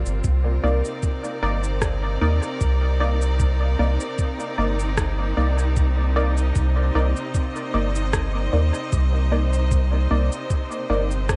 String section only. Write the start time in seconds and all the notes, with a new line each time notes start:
Already playing: C3 C4 F4 A#4 D5
0.24 C3
0.39 A#4
0.70 D#4
0.82 D5
6.28 D#5
6.67 C5